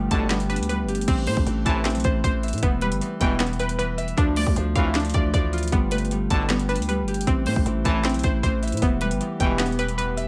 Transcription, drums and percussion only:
0.11 kick medium
0.11 closed hi-hat medium
0.30 finger snap medium
0.30 snare loud
0.30 closed hi-hat medium
0.40 closed hi-hat medium
0.50 closed hi-hat soft
0.56 closed hi-hat medium
0.63 closed hi-hat medium
0.69 closed hi-hat medium
0.88 closed hi-hat soft
0.95 closed hi-hat medium
1.01 closed hi-hat medium
1.08 kick loud
1.08 closed hi-hat medium
1.08 crash loud
1.27 open hi-hat medium
1.37 kick loud
1.47 closed hi-hat medium
1.66 kick medium
1.66 closed hi-hat medium
1.85 finger snap loud
1.85 snare loud
1.85 closed hi-hat medium
1.90 closed hi-hat medium
1.95 closed hi-hat medium
2.00 closed hi-hat medium
2.04 kick loud
2.04 closed hi-hat medium
2.24 kick medium
2.24 closed hi-hat medium
2.43 closed hi-hat soft
2.48 closed hi-hat medium
2.53 closed hi-hat medium
2.58 closed hi-hat medium
2.63 kick loud
2.63 closed hi-hat medium
2.81 closed hi-hat soft
2.81 open hi-hat medium
2.92 closed hi-hat medium
3.01 closed hi-hat medium
3.21 kick loud
3.21 closed hi-hat medium
3.40 finger snap medium
3.40 snare loud
3.40 closed hi-hat medium
3.47 closed hi-hat medium
3.53 closed hi-hat soft
3.59 closed hi-hat medium
3.69 closed hi-hat medium
3.79 closed hi-hat medium
3.98 closed hi-hat medium
4.08 closed hi-hat soft
4.18 kick loud
4.18 closed hi-hat medium
4.36 open hi-hat medium
4.47 kick loud
4.56 closed hi-hat medium
4.76 kick medium
4.76 closed hi-hat medium
4.95 finger snap loud
4.95 snare loud
4.95 closed hi-hat medium
5.00 closed hi-hat medium
5.05 closed hi-hat medium
5.10 closed hi-hat medium
5.14 kick loud
5.14 closed hi-hat medium
5.34 kick medium
5.34 closed hi-hat medium
5.53 closed hi-hat soft
5.58 closed hi-hat medium
5.63 closed hi-hat medium
5.68 closed hi-hat medium
5.72 kick loud
5.72 closed hi-hat medium
5.91 closed hi-hat medium
5.91 open hi-hat medium
5.98 closed hi-hat medium
6.05 closed hi-hat soft
6.11 closed hi-hat medium
6.30 kick medium
6.30 closed hi-hat medium
6.50 finger snap loud
6.50 snare loud
6.50 closed hi-hat medium
6.59 closed hi-hat medium
6.69 closed hi-hat soft
6.76 closed hi-hat medium
6.82 closed hi-hat medium
6.89 closed hi-hat medium
7.08 closed hi-hat soft
7.14 closed hi-hat medium
7.21 closed hi-hat medium
7.27 kick loud
7.27 closed hi-hat medium
7.46 open hi-hat medium
7.56 kick medium
7.66 closed hi-hat medium
7.85 kick medium
7.85 closed hi-hat medium
8.05 finger snap loud
8.05 snare loud
8.05 closed hi-hat medium
8.09 closed hi-hat medium
8.14 closed hi-hat medium
8.19 closed hi-hat medium
8.23 kick loud
8.23 closed hi-hat medium
8.43 kick medium
8.43 closed hi-hat medium
8.63 closed hi-hat soft
8.68 closed hi-hat medium
8.72 closed hi-hat medium
8.77 closed hi-hat medium
8.82 kick loud
8.82 closed hi-hat medium
9.01 closed hi-hat soft
9.01 open hi-hat medium
9.11 closed hi-hat medium
9.21 closed hi-hat medium
9.40 kick medium
9.40 closed hi-hat medium
9.59 finger snap loud
9.59 snare loud
9.59 closed hi-hat medium
9.66 closed hi-hat medium
9.72 closed hi-hat soft
9.79 closed hi-hat medium
9.88 closed hi-hat medium
9.99 closed hi-hat medium
10.18 closed hi-hat medium

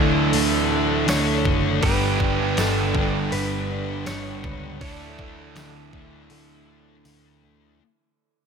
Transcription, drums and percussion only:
0.33 open hi-hat medium
1.08 snare loud
1.08 open hi-hat medium
1.08 tambourine loud
1.45 kick medium
1.83 kick loud
1.83 open hi-hat medium
2.20 kick medium
2.57 snare loud
2.57 open hi-hat medium
2.57 tambourine loud
2.95 kick medium
3.32 open hi-hat medium
4.06 snare loud
4.06 open hi-hat medium
4.06 tambourine medium
4.44 kick medium
4.81 kick loud
4.81 open hi-hat medium
5.19 kick medium
5.56 snare loud
5.56 open hi-hat medium
5.56 tambourine loud
5.93 kick medium
6.30 open hi-hat medium
7.05 open hi-hat medium
7.05 tambourine loud

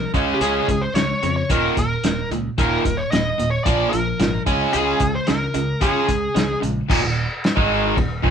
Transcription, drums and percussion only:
0.14 kick medium
0.14 closed hi-hat soft
0.41 closed hi-hat medium
0.68 kick medium
0.68 closed hi-hat medium
0.95 snare medium
0.95 closed hi-hat medium
1.23 closed hi-hat medium
1.50 kick loud
1.50 closed hi-hat medium
1.77 kick medium
1.77 closed hi-hat medium
2.04 snare loud
2.04 closed hi-hat medium
2.32 closed hi-hat medium
2.58 kick loud
2.58 closed hi-hat medium
2.85 kick medium
2.85 closed hi-hat medium
3.12 snare medium
3.12 closed hi-hat medium
3.39 closed hi-hat medium
3.66 kick loud
3.66 closed hi-hat medium
3.93 closed hi-hat soft
4.20 snare loud
4.20 closed hi-hat medium
4.47 kick medium
4.47 closed hi-hat soft
4.73 closed hi-hat medium
5.00 kick medium
5.00 closed hi-hat medium
5.27 snare medium
5.27 closed hi-hat medium
5.54 closed hi-hat medium
5.81 kick loud
5.81 closed hi-hat medium
6.09 kick medium
6.09 closed hi-hat medium
6.36 snare loud
6.36 closed hi-hat medium
6.63 closed hi-hat medium
6.90 kick loud
6.90 crash loud
6.90 crash medium
7.44 snare loud
7.44 crash medium
7.57 kick loud
7.97 kick medium
7.97 crash medium
8.24 kick loud

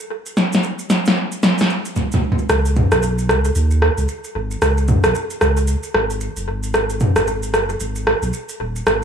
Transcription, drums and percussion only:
0.26 shaker soft
0.37 snare soft
0.37 shaker medium
0.53 snare soft
0.53 shaker medium
0.63 shaker soft
0.79 shaker medium
0.90 snare medium
0.90 shaker medium
1.06 snare medium
1.06 shaker medium
1.32 shaker medium
1.43 snare medium
1.43 shaker medium
1.58 snare medium
1.58 shaker medium
1.70 shaker soft
1.85 shaker soft
1.96 floor tom medium
1.96 shaker medium
2.12 floor tom medium
2.12 shaker soft
2.32 floor tom medium
2.39 shaker soft
2.49 cross-stick loud
2.49 shaker medium
2.65 shaker medium
2.76 mid tom medium
2.76 shaker soft
2.92 cross-stick medium
2.92 shaker medium
3.03 shaker medium
3.18 shaker medium
3.29 cross-stick medium
3.29 shaker medium
3.45 shaker medium
3.55 shaker medium
3.71 shaker medium
3.82 cross-stick medium
3.98 shaker soft
4.08 shaker medium
4.24 shaker medium
4.51 shaker medium
4.62 cross-stick medium
4.62 shaker medium
4.78 shaker medium
4.88 mid tom medium
4.88 shaker soft
5.04 cross-stick loud
5.04 shaker medium
5.15 shaker medium
5.30 shaker medium
5.41 cross-stick medium
5.41 shaker medium
5.57 shaker medium
5.68 shaker medium
5.83 shaker medium
5.95 cross-stick medium
6.10 shaker soft
6.21 shaker medium
6.37 shaker medium
6.63 shaker soft
6.74 cross-stick medium
6.74 shaker medium
6.90 shaker medium
7.00 mid tom medium
7.00 shaker soft
7.16 cross-stick medium
7.16 shaker medium
7.27 shaker medium
7.43 shaker medium
7.54 cross-stick medium
7.54 shaker medium
7.69 shaker medium
7.80 shaker medium
7.96 shaker medium
8.07 cross-stick medium
8.23 shaker soft
8.33 shaker medium
8.49 shaker medium
8.76 shaker soft
8.87 cross-stick loud
8.87 shaker medium

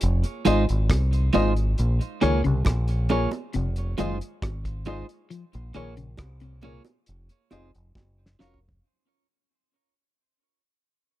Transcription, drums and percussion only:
0.01 closed hi-hat medium
0.24 closed hi-hat medium
0.45 closed hi-hat medium
0.45 high bongo medium
0.69 closed hi-hat medium
0.90 kick loud
0.90 cross-stick loud
0.90 closed hi-hat loud
0.90 high bongo medium
1.13 closed hi-hat medium
1.33 closed hi-hat medium
1.33 low bongo medium
1.56 closed hi-hat medium
1.78 closed hi-hat medium
2.01 closed hi-hat soft
2.21 cross-stick medium
2.21 closed hi-hat medium
2.44 closed hi-hat soft
2.65 kick loud
2.65 cross-stick loud
2.65 closed hi-hat medium
2.65 high bongo medium
2.88 closed hi-hat soft
3.09 closed hi-hat medium
3.09 low bongo medium
3.31 closed hi-hat medium
3.31 high bongo medium
3.53 closed hi-hat medium
3.76 closed hi-hat medium
3.98 closed hi-hat medium
3.98 high bongo medium
4.21 closed hi-hat medium
4.42 kick loud
4.42 cross-stick loud
4.42 closed hi-hat medium
4.42 high bongo medium
4.65 kick medium
4.65 closed hi-hat medium
4.85 closed hi-hat medium
4.85 low bongo medium
5.09 closed hi-hat medium
5.31 closed hi-hat medium
5.53 closed hi-hat soft
5.74 closed hi-hat medium
5.97 closed hi-hat soft
6.17 kick loud
6.17 cross-stick loud
6.17 closed hi-hat medium
6.17 high bongo medium
6.40 closed hi-hat soft
6.62 closed hi-hat medium
6.62 low bongo medium
6.85 closed hi-hat medium
6.85 high bongo medium
7.06 closed hi-hat medium
7.29 closed hi-hat medium
7.51 closed hi-hat medium
7.51 high bongo medium
7.75 closed hi-hat medium
7.95 kick loud
7.95 snare medium
7.95 high bongo medium
8.26 snare medium
8.40 snare medium
8.40 low bongo medium
8.54 floor tom medium
8.69 floor tom medium

